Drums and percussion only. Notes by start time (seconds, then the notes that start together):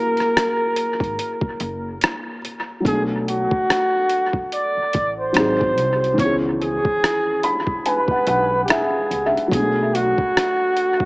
0.17 cross-stick, closed hi-hat
0.37 cross-stick, closed hi-hat
0.76 closed hi-hat
1.00 kick, closed hi-hat
1.19 closed hi-hat
1.41 kick
1.60 closed hi-hat
2.01 cross-stick, closed hi-hat
2.45 closed hi-hat
2.85 kick, closed hi-hat
3.28 closed hi-hat
3.51 kick
3.70 cross-stick, closed hi-hat
4.10 closed hi-hat
4.33 kick
4.52 closed hi-hat
4.93 kick, closed hi-hat
5.34 cross-stick, closed hi-hat
5.61 kick
5.78 closed hi-hat
6.04 closed hi-hat
6.18 kick, closed hi-hat
6.61 closed hi-hat
6.85 kick
7.04 cross-stick, closed hi-hat
7.43 closed hi-hat
7.67 kick
7.86 closed hi-hat
8.08 kick
8.27 closed hi-hat
8.68 cross-stick, closed hi-hat
9.11 closed hi-hat
9.37 closed hi-hat
9.51 kick, closed hi-hat
9.95 closed hi-hat
10.18 kick
10.37 cross-stick, closed hi-hat
10.77 closed hi-hat
11.00 kick